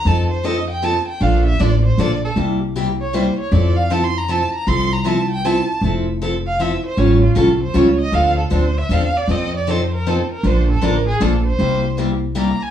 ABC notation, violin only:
X:1
M:3/4
L:1/16
Q:"Swing" 1/4=156
K:F
V:1 name="Violin"
a2 c2 _e2 g2 a2 g2 | f2 e2 d2 c2 d2 A2 | z6 _d2 c2 d2 | d2 f2 (3a2 c'2 b2 a2 b2 |
c'2 b2 a2 g2 a3 z | z6 f2 e2 c2 | ^c2 ^E2 A2 ^B2 c2 _e2 | f2 A2 c2 e2 f2 d2 |
_e2 d2 c2 B2 A2 B2 | c2 A2 B2 _A2 =A2 c2- | c4 z4 b2 _a2 |]